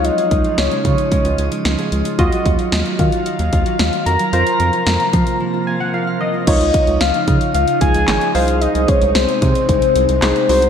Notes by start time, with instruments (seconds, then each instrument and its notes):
Already playing: analog synth bass C#2, string machine C#3 F3 D#4, harp G#3 F#4 G#4 F#5, synth keys D#4 F4 C#5
0.04 harp F4, soft synth lead D#5, closed hi-hat
0.18 harp G#4, closed hi-hat
0.31 analog synth bass C#2, harp G#3, kick, closed hi-hat
0.44 harp F4, closed hi-hat
0.58 analog synth bass C#2, harp G#4, soft synth lead C#5, snare, closed hi-hat
0.71 harp G#3, closed hi-hat
0.85 analog synth bass C#3, harp F4, kick, closed hi-hat
0.98 closed hi-hat
1.12 harp G#3, kick, closed hi-hat
1.25 analog synth bass C#2, harp F4, closed hi-hat
1.38 analog synth bass C#2, harp G#4, closed hi-hat
1.52 harp G#3, closed hi-hat
1.65 analog synth bass C#2, harp F4, snare, closed hi-hat
1.79 harp G#4, closed hi-hat
1.92 analog synth bass C#2, harp G#3, closed hi-hat
2.05 harp F4, closed hi-hat
2.19 analog synth bass D#2, string machine D#3 F#3 F5, harp F#3, synth keys F4 F#4 D#5, kick, closed hi-hat
2.32 harp F4, closed hi-hat
2.45 analog synth bass D#2, harp F#4, kick, closed hi-hat
2.59 harp F#3, closed hi-hat
2.72 analog synth bass D#2, harp F4, snare, closed hi-hat
2.86 harp F#4, closed hi-hat
2.99 analog synth bass D#3, harp F#3, soft synth lead F5, kick, closed hi-hat
3.12 harp F4, closed hi-hat
3.26 harp F#4, closed hi-hat
3.39 analog synth bass D#2, harp F#3, closed hi-hat
3.53 analog synth bass D#2, harp F4, kick, closed hi-hat
3.66 harp F#4, closed hi-hat
3.79 analog synth bass D#2, harp F#3, snare, closed hi-hat
3.93 harp F4, closed hi-hat
4.06 analog synth bass F2, harp F#4, soft synth lead A#5, closed hi-hat
4.19 harp F#3, closed hi-hat
4.33 analog synth bass F2, string machine C3 A#3, harp F4, synth keys F4 A#4 C5, closed hi-hat
4.47 harp F5, closed hi-hat
4.60 analog synth bass F2, harp F3, closed hi-hat
4.73 harp F4, closed hi-hat
4.87 analog synth bass F2, harp F5, snare, closed hi-hat
5.00 harp F3, closed hi-hat
5.13 analog synth bass F3, harp F4, kick, closed hi-hat
5.27 closed hi-hat
5.40 harp F3
5.54 harp F4
5.67 harp F5, synth keys G#5
5.80 harp F3, synth keys F#5
5.94 harp F4, synth keys F5
6.07 harp F5
6.21 harp F3, synth keys D#5
6.34 harp F4
6.47 analog synth bass C#2, string machine C#3 F3 D#4, synth keys D#4 F4 C#5, soft synth lead D#5, kick, closed hi-hat, crash
6.61 analog synth bass C#2, closed hi-hat
6.74 kick, closed hi-hat
6.87 analog synth bass C#2, closed hi-hat
7.01 analog synth bass C#2, soft synth lead F5, snare, closed hi-hat
7.14 closed hi-hat
7.28 analog synth bass C#3, kick, closed hi-hat
7.41 closed hi-hat
7.54 analog synth bass C#2, soft synth lead F5, closed hi-hat
7.68 closed hi-hat
7.81 analog synth bass C#2, soft synth lead G#5, kick, closed hi-hat
7.94 analog synth bass C#2, closed hi-hat
8.08 analog synth bass G#1, snare, clap, closed hi-hat
8.21 closed hi-hat
8.35 analog synth bass C2, string machine C3 G#3, synth keys D#4 G#4 C5, soft synth lead F5, open hi-hat
8.48 closed hi-hat
8.61 soft synth lead D#5, closed hi-hat
8.75 analog synth bass C2, closed hi-hat
8.88 soft synth lead C#5, kick, closed hi-hat
9.02 analog synth bass C2, closed hi-hat
9.15 analog synth bass C2, soft synth lead C5, snare, closed hi-hat
9.29 closed hi-hat
9.42 analog synth bass C3, soft synth lead C5, kick, closed hi-hat
9.55 closed hi-hat
9.69 analog synth bass C2, soft synth lead C5, kick, closed hi-hat
9.82 closed hi-hat
9.96 analog synth bass C2, closed hi-hat
10.09 analog synth bass C2, closed hi-hat
10.22 analog synth bass C2, synth keys D#4 G#4 C5, soft synth lead C5, snare, clap, closed hi-hat
10.36 closed hi-hat
10.49 analog synth bass C2, string machine F#3 D#4, synth keys D#4 F#4 C5, open hi-hat
10.62 closed hi-hat